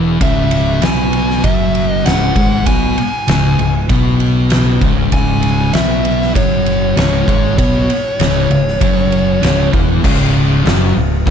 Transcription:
Already playing: fingered electric bass E1, distorted electric guitar E2 E3
0.20 fingered electric bass C#1, distorted electric guitar C#2 C#3, lead electric guitar E5, kick, ride
0.51 ride
0.81 fingered electric bass B1, distorted electric guitar B2 B3, lead electric guitar G#5, snare, ride
1.13 ride
1.30 snare
1.43 fingered electric bass F#1, distorted electric guitar F#2 F#3, lead electric guitar E5, kick, ride
1.75 ride
1.89 lead electric guitar D#5
2.05 fingered electric bass C#1, distorted electric guitar C#2 C#3, lead electric guitar F#5, snare, ride
2.36 fingered electric bass G#1, distorted electric guitar G#2 G#3, kick, ride
2.66 fingered electric bass B1, distorted electric guitar B2 B3, lead electric guitar G#5, kick, ride
2.98 ride
3.28 fingered electric bass C#1, distorted electric guitar C#2 C#3, snare, ride
3.59 fingered electric bass C#1, distorted electric guitar C#2, ride
3.89 fingered electric bass B1, distorted electric guitar B2 B3, kick, ride
4.20 ride
4.50 snare, ride
4.81 fingered electric bass C#1, distorted electric guitar C#2 C#3, kick, ride
5.12 fingered electric bass C#1, distorted electric guitar C#2 C#3, lead electric guitar G#5, kick, ride
5.43 ride
5.73 fingered electric bass B1, distorted electric guitar B2 B3, lead electric guitar E5, snare, ride
6.05 ride
6.22 snare
6.35 fingered electric bass F#1, distorted electric guitar F#2 F#3, lead electric guitar C#5, kick, ride
6.66 ride
6.96 fingered electric bass C#1, distorted electric guitar C#2 C#3, lead electric guitar C#5, snare, ride
7.27 fingered electric bass G#1, distorted electric guitar G#2 G#3, kick, ride
7.57 fingered electric bass B1, distorted electric guitar B2 B3, lead electric guitar C#5, kick, ride
7.90 ride
8.19 fingered electric bass C#1, distorted electric guitar C#2 C#3, snare, ride
8.50 fingered electric bass C#1, distorted electric guitar C#2, ride
8.68 snare
8.81 fingered electric bass F#1, distorted electric guitar F#2 F#3, kick, ride
9.12 ride
9.42 fingered electric bass C#1, distorted electric guitar C#2 C#3, snare, ride
9.72 fingered electric bass E1, distorted electric guitar E2 E3, kick, ride
10.03 fingered electric bass C#1, distorted electric guitar C#2 C#3, kick, crash
10.64 fingered electric bass F#1, distorted electric guitar F#2 F#3, snare, open hi-hat
10.95 fingered electric bass C#1, distorted electric guitar C#2
11.25 fingered electric bass C#1, distorted electric guitar C#2 C#3, kick, open hi-hat

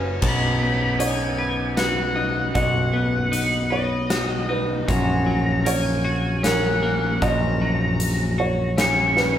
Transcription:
Already playing: picked electric bass F#1, pedal steel guitar C#3 F#3 E4 A#5, clean electric guitar C#3 F#3 C#4 F#4, felt piano B4
0.21 picked electric bass B1, clean electric guitar B2, pedal steel guitar C#3 F#3 B3 D#4, lead electric guitar B5, kick, crash
0.61 clean electric guitar B3
0.99 clean electric guitar D#4, felt piano C#5, lead electric guitar G#5, closed hi-hat
1.38 clean electric guitar B4
1.77 clean electric guitar F#4, felt piano B4, lead electric guitar F#5, snare, closed hi-hat
2.16 clean electric guitar D#4
2.54 picked electric bass B1, clean electric guitar B2, felt piano D#5, lead electric guitar F#5, kick, closed hi-hat
2.93 clean electric guitar B3
3.32 clean electric guitar D#4, closed hi-hat
3.70 clean electric guitar B4, felt piano C#5, lead electric guitar D#5
4.10 clean electric guitar F#4, snare, closed hi-hat
4.49 clean electric guitar D#4, felt piano B4
4.88 picked electric bass A#1, clean electric guitar F#2, pedal steel guitar C#4 F#4, lead electric guitar A#5, kick, closed hi-hat
5.26 clean electric guitar F#3
5.65 clean electric guitar A#3, felt piano C#5, lead electric guitar G#5, closed hi-hat
6.05 clean electric guitar F#4
6.43 clean electric guitar C#4, felt piano A#4, lead electric guitar F#5, snare, closed hi-hat
6.83 clean electric guitar A#3
7.22 picked electric bass A#1, clean electric guitar F#2, felt piano D#5, lead electric guitar A#5, kick, closed hi-hat
7.61 clean electric guitar F#3
8.00 closed hi-hat
8.38 clean electric guitar F#4, felt piano C#5
8.78 clean electric guitar C#4, lead electric guitar C#6, snare, closed hi-hat
9.17 felt piano B4, snare

